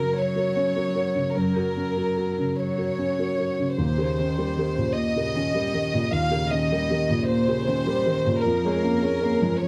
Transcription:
Already playing: felt piano C#3 C#4 F#4 A#4, cello F#3, violin section A#4
0.16 cello F#3, violin section C#5
0.36 felt piano F#4 A#4
0.56 felt piano C#4
0.76 felt piano F#4 A#4
0.95 felt piano F#4 A#4
1.15 felt piano C#3
1.35 felt piano F#2, cello F#3, violin section A#4
1.56 felt piano F#4 A#4
1.77 felt piano C#4
1.97 felt piano F#4 A#4
2.17 felt piano F#4 A#4
2.38 felt piano C#3
2.56 cello F#3, violin section C#5
2.78 felt piano F#4 A#4
2.98 felt piano C#4
3.19 felt piano F#4 A#4
3.39 felt piano F#4 A#4
3.59 felt piano C#3
3.76 felt piano D#2, cello A#2, violin section C5
3.98 cello C#3, felt piano G4 A#4
4.18 cello D#3, felt piano C#4
4.38 cello G3, felt piano G4 A#4
4.57 cello D#3, felt piano G4 A#4
4.76 felt piano A#2, cello C#3
4.95 cello A#2, violin section D#5
5.15 cello C#3, felt piano G4 A#4
5.35 cello D#3, felt piano C#4
5.54 cello G3, felt piano G4 A#4
5.74 cello D#3, felt piano G4 A#4
5.93 felt piano A#2, cello C#3
6.12 felt piano D#2, cello A#2, violin section F5
6.31 cello C#3, felt piano G4 A#4
6.51 cello D#3, felt piano C#4, violin section D#5
6.71 cello G3, felt piano G4 A#4
6.90 cello D#3, felt piano G4 A#4
7.10 felt piano A#2, cello C#3
7.28 cello A#2, violin section C5
7.48 cello C#3, felt piano G4 A#4
7.67 cello D#3, felt piano C#4
7.87 cello G3, felt piano G4 A#4
8.06 cello D#3, felt piano G4 A#4
8.26 felt piano A#2, cello C#3
8.42 felt piano F2, cello F3, violin section A#4
8.64 cello G#3, felt piano G#4 C#5
8.83 cello A#3, felt piano C#4
9.02 cello C#4, felt piano G#4 C#5
9.22 cello A#3, felt piano G#4 C#5
9.42 felt piano F3, cello G#3
9.60 cello F3, violin section C#5

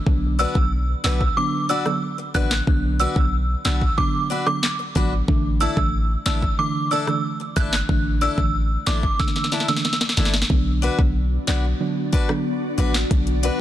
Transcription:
0.06 808-style bass B1, synth pluck D3 F#3 B3 D4, kick
0.39 steel-string acoustic guitar D4 F#4 B4, synth bell E6
0.55 808-style bass B1, synth pluck D3 F#3 B3 D4, kick
1.04 808-style bass B1, synth pluck D3 F#3 B3 D4, steel-string acoustic guitar D4 F#4 B4, synth bell E6, snare, clap
1.21 kick
1.37 synth pluck D3 F#3 B3 D4, synth bell D6
1.69 steel-string acoustic guitar D4 F#4 B4, synth bell E6
1.85 synth pluck D3 F#3 B3 D4, muted steel-string acoustic guitar stroke, cross-stick
2.18 muted steel-string acoustic guitar stroke
2.34 808-style bass A1, synth pluck D3 F#3 B3 D4, steel-string acoustic guitar D4 F#4 B4, synth bell F#6, kick
2.51 snare, clap
2.67 808-style bass B1, synth pluck D3 F#3 B3 D4, kick
2.99 steel-string acoustic guitar D4 F#4 B4, synth bell E6
3.16 808-style bass B1, synth pluck D3 F#3 B3 D4, kick
3.65 808-style bass B1, synth pluck D3 F#3 B3 D4, steel-string acoustic guitar D4 F#4 B4, synth bell E6, snare, clap
3.81 kick
3.97 synth pluck D3 F#3 B3 D4, synth bell D6, kick
4.30 steel-string acoustic guitar D4 F#4 B4
4.46 synth pluck D3 F#3 B3 D4, synth bell D6, muted steel-string acoustic guitar stroke, cross-stick
4.63 snare, clap
4.79 muted steel-string acoustic guitar stroke
4.95 808-style bass A1, synth pluck D3 F#3 B3 D4, steel-string acoustic guitar D4 F#4 B4, kick
5.28 808-style bass A1, synth pluck D3 E3 A3 D4, kick
5.60 steel-string acoustic guitar D4 E4 A4, synth bell E6
5.77 808-style bass A1, synth pluck D3 E3 A3 D4, kick
6.26 808-style bass A1, synth pluck D3 E3 A3 D4, steel-string acoustic guitar D4 E4 A4, synth bell E6, snare, clap
6.42 kick
6.58 synth pluck D3 E3 A3 D4, synth bell D6
6.91 steel-string acoustic guitar D4 E4 A4, synth bell E6
7.07 synth pluck D3 E3 A3 D4, muted steel-string acoustic guitar stroke, cross-stick
7.40 muted steel-string acoustic guitar stroke
7.56 808-style bass G1, synth pluck D3 E3 A3 D4, steel-string acoustic guitar D4 E4 A4, synth bell F#6, kick
7.73 snare, clap
7.89 808-style bass A1, synth pluck D3 E3 A3 D4, kick
8.21 steel-string acoustic guitar D4 E4 A4, synth bell E6
8.38 808-style bass A1, synth pluck D3 E3 A3 D4, kick
8.86 808-style bass A1, synth pluck D3 E3 A3 D4, steel-string acoustic guitar D4 E4 A4, synth bell D6, snare, clap
9.03 kick
9.19 synth pluck D3 E3 A3 D4, synth bell E6, kick, snare
9.28 snare
9.36 snare
9.44 snare
9.52 steel-string acoustic guitar D4 E4 A4, snare
9.60 snare
9.68 synth pluck D3 E3 A3 D4, synth bell E6, muted steel-string acoustic guitar stroke, snare
9.77 snare
9.85 snare
9.93 snare
10.01 muted steel-string acoustic guitar stroke, snare
10.09 snare
10.17 808-style bass G1, synth pluck D3 E3 A3 D4, steel-string acoustic guitar D4 E4 A4, snare
10.25 snare
10.34 snare
10.42 snare
10.50 808-style bass B1, synth pluck D3 F#3 B3 D4, ambient pad B3 D4 F#4 D5, kick
10.82 steel-string acoustic guitar D4 F#4 B4
10.98 808-style bass B1, synth pluck D3 F#3 B3 D4, kick
11.47 808-style bass B1, synth pluck D3 F#3 B3 D4, steel-string acoustic guitar D4 F#4 B4, snare, clap
11.80 synth pluck D3 F#3 B3 D4
12.12 steel-string acoustic guitar D4 F#4 B4, kick
12.29 synth pluck D3 F#3 B3 D4, cross-stick
12.78 808-style bass A1, synth pluck D3 F#3 B3 D4, steel-string acoustic guitar D4 F#4 B4
12.94 snare, clap
13.11 808-style bass B1, synth pluck D3 F#3 B3 D4, kick, closed hi-hat
13.27 closed hi-hat
13.43 steel-string acoustic guitar D4 F#4 B4, closed hi-hat

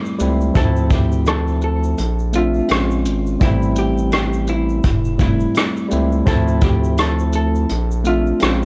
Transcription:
Already playing: tine electric piano G3 A3 C4 E4
0.06 shaker
0.19 analog synth bass C#2, tine electric piano G3 A3 C4, shaker
0.23 tine electric piano E4
0.41 shaker
0.54 analog synth bass D2, tine electric piano F3 A3 C4, hollow-body jazz guitar A4, kick, closed hi-hat, shaker
0.59 tine electric piano D#4
0.65 tine electric piano E4
0.77 shaker
0.90 hollow-body jazz guitar G4, kick, shaker
1.12 shaker
1.26 hollow-body jazz guitar A4, cross-stick, closed hi-hat, shaker
1.47 shaker
1.62 hollow-body jazz guitar A4, shaker
1.84 shaker
1.98 analog synth bass A#1, closed hi-hat, shaker
2.19 shaker
2.33 tine electric piano A3 C4 D4, hollow-body jazz guitar F4, shaker
2.37 tine electric piano E5
2.54 shaker
2.68 analog synth bass A#1, tine electric piano G#3 C4 C#4, cross-stick, closed hi-hat, shaker
2.73 tine electric piano F4
2.91 shaker
3.05 analog synth bass G#1, shaker
3.26 shaker
3.40 analog synth bass A1, tine electric piano G3 A3 C4, hollow-body jazz guitar E4, kick, closed hi-hat, shaker
3.44 tine electric piano E4
3.62 shaker
3.76 hollow-body jazz guitar G4, shaker
3.98 shaker
4.12 hollow-body jazz guitar G4, cross-stick, closed hi-hat, shaker
4.33 shaker
4.47 hollow-body jazz guitar E4, shaker
4.69 shaker
4.83 analog synth bass F1, kick, closed hi-hat, shaker
5.05 shaker
5.18 tine electric piano G3 A3 C4, hollow-body jazz guitar E4, kick, shaker
5.22 tine electric piano E4
5.40 shaker
5.54 cross-stick, closed hi-hat, shaker
5.76 shaker
5.88 analog synth bass C#2, tine electric piano G3 A3 C4, shaker
5.93 tine electric piano E4
6.12 shaker
6.25 analog synth bass D2, tine electric piano F3 A3 C4, hollow-body jazz guitar A4, kick, closed hi-hat, shaker
6.30 tine electric piano E4
6.48 shaker
6.62 hollow-body jazz guitar G4, kick, shaker
6.84 shaker
6.97 hollow-body jazz guitar A4, cross-stick, closed hi-hat, shaker
7.19 shaker
7.33 hollow-body jazz guitar A4, shaker
7.55 shaker
7.69 analog synth bass A#1, closed hi-hat, shaker
7.91 shaker
8.04 tine electric piano A3 C4 D4, hollow-body jazz guitar F4, shaker
8.08 tine electric piano E5
8.27 shaker
8.40 analog synth bass A#1, tine electric piano G#3 C4 C#4, cross-stick, closed hi-hat, shaker
8.44 tine electric piano F4

